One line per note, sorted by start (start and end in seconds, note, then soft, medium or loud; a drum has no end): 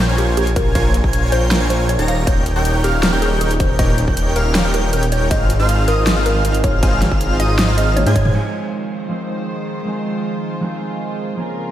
0.00 0.13 G4 loud
0.09 0.35 A#1 loud
0.09 0.35 F4 medium
0.09 0.35 A#4 medium
0.09 0.35 C5 medium
0.09 0.35 C#5 medium
0.09 0.35 G#5 medium
0.09 0.35 G#6 medium
0.18 0.35 G4 medium
0.18 closed hi-hat medium
0.37 0.73 A#1 loud
0.37 0.73 F4 loud
0.37 0.54 G4 medium
0.37 0.73 A#4 medium
0.37 0.73 C5 medium
0.37 0.73 C#5 medium
0.37 0.73 G#5 loud
0.37 0.73 G#6 loud
0.37 closed hi-hat medium
0.47 closed hi-hat medium
0.56 0.73 A#4 medium
0.56 kick loud
0.56 closed hi-hat medium
0.75 1.02 A#1 loud
0.75 0.92 F4 medium
0.75 0.92 A#4 medium
0.75 0.92 C5 medium
0.75 0.92 C#5 medium
0.75 1.00 F5 loud
0.75 0.92 G#5 loud
0.75 0.92 G#6 medium
0.75 kick loud
0.75 closed hi-hat medium
0.75 ride soft
0.94 closed hi-hat medium
1.04 1.30 A#1 loud
1.04 1.30 F4 loud
1.04 1.30 A#4 medium
1.04 1.30 C5 medium
1.04 1.30 C#5 medium
1.04 1.30 G#5 loud
1.04 1.30 G#6 loud
1.04 kick medium
1.13 closed hi-hat medium
1.32 1.59 A#1 loud
1.32 1.59 F4 medium
1.32 1.59 A#4 medium
1.32 1.59 C5 medium
1.32 1.65 C5 loud
1.32 1.59 C#5 medium
1.32 1.59 G5 medium
1.32 1.59 G6 medium
1.32 closed hi-hat medium
1.51 snare loud
1.51 closed hi-hat medium
1.51 ride soft
1.61 1.97 A#1 medium
1.61 1.87 F4 medium
1.61 1.87 A#4 medium
1.61 1.87 C5 medium
1.61 1.87 C#5 medium
1.61 1.87 G#5 medium
1.61 1.87 G#6 medium
1.70 1.87 C5 medium
1.70 closed hi-hat medium
1.89 2.06 C#5 medium
1.89 closed hi-hat medium
1.99 2.25 D#1 loud
1.99 2.25 D#4 medium
1.99 2.25 G4 medium
1.99 2.25 A#4 medium
1.99 2.25 C#5 medium
1.99 2.25 A#5 medium
1.99 2.25 A#6 loud
1.99 closed hi-hat medium
2.08 2.25 F5 medium
2.08 closed hi-hat medium
2.27 2.54 D#1 loud
2.27 2.44 D#4 medium
2.27 2.44 G4 medium
2.27 2.44 A#4 medium
2.27 2.44 C#5 medium
2.27 2.52 C#5 loud
2.27 2.44 G5 medium
2.27 2.44 G6 medium
2.27 kick loud
2.27 closed hi-hat medium
2.27 ride soft
2.46 closed hi-hat medium
2.56 2.82 D#1 loud
2.56 2.82 D#4 loud
2.56 2.82 G4 medium
2.56 2.82 A#4 medium
2.56 2.82 C#5 medium
2.56 2.82 G5 loud
2.56 2.82 G6 loud
2.65 closed hi-hat medium
2.84 3.11 D#1 loud
2.84 3.10 D#4 medium
2.84 3.10 G4 medium
2.84 3.17 G4 loud
2.84 3.10 A#4 medium
2.84 3.10 C#5 medium
2.84 3.10 F5 medium
2.84 3.10 F6 medium
2.84 closed hi-hat medium
3.03 snare loud
3.03 closed hi-hat medium
3.03 ride soft
3.13 3.39 D#1 loud
3.13 3.39 D#4 medium
3.13 3.39 G4 medium
3.13 3.39 A#4 medium
3.13 3.39 C#5 medium
3.13 3.39 G5 medium
3.13 3.39 G6 medium
3.22 3.38 G#4 medium
3.22 closed hi-hat medium
3.41 3.77 D#1 loud
3.41 3.77 D#4 medium
3.41 3.77 G4 medium
3.41 3.57 G#4 medium
3.41 3.77 A#4 medium
3.41 3.77 C#5 medium
3.41 3.77 G5 loud
3.41 3.77 G6 loud
3.41 closed hi-hat medium
3.51 closed hi-hat medium
3.60 3.76 C5 medium
3.60 kick loud
3.60 closed hi-hat medium
3.79 4.06 D#1 loud
3.79 3.96 D#4 medium
3.79 3.96 G4 medium
3.79 3.96 A#4 medium
3.79 3.96 C#5 medium
3.79 4.04 D#5 loud
3.79 3.96 G5 loud
3.79 3.96 G6 medium
3.79 kick loud
3.79 closed hi-hat medium
3.79 ride soft
3.98 closed hi-hat medium
4.08 4.34 D#1 loud
4.08 4.34 D#4 loud
4.08 4.34 G4 medium
4.08 4.34 A#4 medium
4.08 4.34 C#5 medium
4.08 4.34 G5 loud
4.08 4.34 G6 loud
4.08 kick medium
4.17 closed hi-hat medium
4.36 4.63 D#1 loud
4.36 4.62 D#4 medium
4.36 4.62 G4 medium
4.36 4.62 A#4 medium
4.36 4.69 A#4 loud
4.36 4.62 C#5 medium
4.36 4.62 F5 medium
4.36 4.62 F6 medium
4.36 closed hi-hat medium
4.55 snare loud
4.55 closed hi-hat medium
4.55 ride soft
4.65 4.91 D#1 loud
4.65 4.91 D#4 medium
4.65 4.91 G4 medium
4.65 4.91 A#4 medium
4.65 4.91 C#5 medium
4.65 4.91 G5 medium
4.65 4.91 G6 medium
4.74 4.91 A#4 medium
4.74 closed hi-hat medium
4.93 5.29 D#1 loud
4.93 5.29 D#4 medium
4.93 5.29 G4 medium
4.93 5.29 A#4 medium
4.93 5.10 A#4 medium
4.93 5.29 C#5 medium
4.93 5.29 G5 loud
4.93 5.29 G6 loud
4.93 closed hi-hat medium
5.03 closed hi-hat medium
5.12 5.28 C#5 medium
5.12 closed hi-hat medium
5.31 5.58 G#1 loud
5.31 5.48 D#4 medium
5.31 5.48 F4 medium
5.31 5.48 G#4 medium
5.31 5.48 C5 medium
5.31 5.56 D#5 loud
5.31 5.48 F5 medium
5.31 5.48 F6 loud
5.31 kick loud
5.31 closed hi-hat medium
5.31 ride soft
5.50 closed hi-hat medium
5.60 5.86 G#1 loud
5.60 5.86 D#4 loud
5.60 5.86 F4 medium
5.60 5.86 G#4 medium
5.60 5.86 C5 medium
5.60 5.86 F5 loud
5.60 5.86 F6 loud
5.69 closed hi-hat medium
5.88 6.15 G#1 loud
5.88 6.14 D#4 medium
5.88 6.14 F4 medium
5.88 6.14 G#4 medium
5.88 6.21 A#4 loud
5.88 6.14 C5 medium
5.88 6.14 D#5 medium
5.88 6.14 D#6 medium
5.88 closed hi-hat medium
6.07 snare loud
6.07 closed hi-hat medium
6.07 ride soft
6.16 6.43 G#1 loud
6.16 6.43 D#4 medium
6.16 6.43 F4 medium
6.16 6.43 G#4 medium
6.16 6.43 C5 medium
6.16 6.43 F5 medium
6.16 6.43 F6 medium
6.26 6.42 A#4 medium
6.26 closed hi-hat medium
6.45 6.81 G#1 loud
6.45 6.81 D#4 medium
6.45 6.81 F4 medium
6.45 6.81 G#4 medium
6.45 6.61 A#4 medium
6.45 6.81 C5 medium
6.45 6.81 F5 loud
6.45 6.81 F6 loud
6.45 closed hi-hat medium
6.55 closed hi-hat medium
6.64 6.80 C#5 medium
6.64 kick loud
6.64 closed hi-hat medium
6.83 7.10 G#1 loud
6.83 7.00 D#4 medium
6.83 7.00 F4 medium
6.83 7.00 G#4 medium
6.83 7.00 C5 medium
6.83 7.00 F5 medium
6.83 7.07 G#5 loud
6.83 7.00 F6 loud
6.83 kick loud
6.83 closed hi-hat medium
6.83 ride medium
7.02 snare medium
7.02 closed hi-hat medium
7.11 7.38 G#1 loud
7.11 7.38 D#4 loud
7.11 7.38 F4 medium
7.11 7.38 G#4 medium
7.11 7.38 C5 medium
7.11 7.38 F5 loud
7.11 7.38 F6 loud
7.11 kick medium
7.21 closed hi-hat medium
7.40 7.67 G#1 loud
7.40 7.66 D#4 medium
7.40 7.66 F4 medium
7.40 7.66 G#4 medium
7.40 7.66 C5 medium
7.40 7.73 D#5 loud
7.40 7.66 D#5 medium
7.40 7.66 D#6 medium
7.40 closed hi-hat medium
7.59 snare loud
7.59 closed hi-hat medium
7.59 ride soft
7.68 8.05 G#1 medium
7.68 7.94 D#4 medium
7.68 7.94 F4 medium
7.68 7.95 G#4 medium
7.68 7.95 C5 medium
7.68 7.94 F5 medium
7.68 7.94 F6 medium
7.78 7.94 D#5 medium
7.78 closed hi-hat medium
7.96 8.13 C#5 medium
7.96 closed hi-hat medium
7.96 high tom medium
8.06 8.33 G#2 loud
8.06 8.32 D#4 medium
8.06 8.32 F4 medium
8.06 8.32 G#4 medium
8.06 8.32 C5 medium
8.06 8.32 G#5 medium
8.06 8.32 G#6 loud
8.06 closed hi-hat medium
8.06 high tom medium
8.16 8.32 C#5 medium
8.16 kick medium
8.16 closed hi-hat medium
8.26 mid tom medium
8.33 11.35 D#3 medium
8.33 9.07 F3 medium
8.33 9.08 G#3 medium
8.33 11.35 G#3 medium
8.33 9.08 C4 medium
8.33 9.09 D#4 medium
8.33 11.71 F4 medium
8.33 11.35 C5 medium
8.33 crash medium
8.37 9.09 G#4 medium
9.09 9.83 F3 medium
9.09 9.84 G#3 medium
9.09 9.84 C4 medium
9.09 9.85 D#4 medium
9.13 9.85 C5 medium
9.85 10.59 F3 medium
9.85 10.60 G#3 medium
9.85 10.60 C4 medium
9.85 10.61 D#4 medium
9.85 10.61 G#4 medium
10.61 11.35 F3 medium
10.61 11.36 G#3 medium
10.61 11.36 C4 medium
10.61 11.37 D#4 medium
10.61 11.37 G#4 medium
11.37 11.71 C#3 medium
11.37 11.71 F3 medium
11.37 11.71 G#3 medium
11.37 11.71 A#3 medium
11.37 11.71 C4 medium
11.37 11.71 C#4 medium
11.37 11.71 G#4 medium
11.37 11.71 A#4 medium